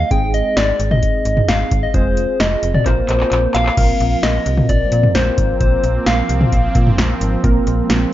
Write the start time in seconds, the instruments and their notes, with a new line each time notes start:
0.00 soft synth lead F5
0.11 fm bass G#1, analog polysynth G#3 C4 D#4 G#4, soft synth lead G5, kick, closed hi-hat
0.34 soft synth lead D#5, closed hi-hat
0.57 fm bass G#1, soft synth lead D5, snare, closed hi-hat
0.80 fm bass G#1, closed hi-hat
0.91 soft synth lead D#5, mid tom
1.03 kick, closed hi-hat
1.25 fm bass G#1, closed hi-hat
1.37 mid tom
1.48 fm bass G#1, soft synth lead F5, snare, closed hi-hat
1.71 fm bass G#1, kick, closed hi-hat
1.83 soft synth lead D#5
1.94 fm bass F1, analog polysynth G#3 C4 F4 G#4, soft synth lead C5, kick, closed hi-hat
2.17 closed hi-hat
2.40 fm bass F1, soft synth lead D#5, snare, closed hi-hat
2.63 fm bass F1, closed hi-hat
2.74 soft synth lead D5, mid tom
2.86 fm bass A#1, analog polysynth A#3 C4 F4 A#4, soft synth lead C5, kick, clap, closed hi-hat
3.09 fm bass A#1, clap, closed hi-hat
3.20 clap
3.32 fm bass A#1, clap, closed hi-hat
3.54 fm bass A#1, soft synth lead F5, clap, closed hi-hat
3.66 clap
3.77 fm bass A#1, analog synth pad F3 A#3 C4, analog polysynth A#3 C4 F4 A#4, kick, closed hi-hat, crash
4.00 fm bass A#1, closed hi-hat
4.23 fm bass A#1, soft synth lead D#5, snare, closed hi-hat
4.46 fm bass C2, closed hi-hat
4.58 mid tom
4.69 fm bass A#1, soft synth lead D5, kick, closed hi-hat
4.92 fm bass A#2, closed hi-hat
5.03 mid tom
5.15 fm bass A#1, soft synth lead C5, snare, closed hi-hat
5.38 fm bass G#1, kick, closed hi-hat
5.61 fm bass A#1, soft synth lead C5, kick, closed hi-hat
5.84 fm bass A#1, closed hi-hat
6.06 fm bass A#1, soft synth lead F5, snare, closed hi-hat
6.29 fm bass C2, closed hi-hat
6.41 mid tom
6.52 fm bass A#1, kick, closed hi-hat
6.75 fm bass A#2, kick, closed hi-hat
6.87 mid tom
6.98 fm bass A#1, snare, closed hi-hat
7.21 fm bass G#1, closed hi-hat
7.44 fm bass A#1, analog synth pad G#3, analog polysynth A#3 C4 F4 A#4, kick, closed hi-hat
7.67 fm bass A#1, closed hi-hat
7.90 fm bass A#1, snare, closed hi-hat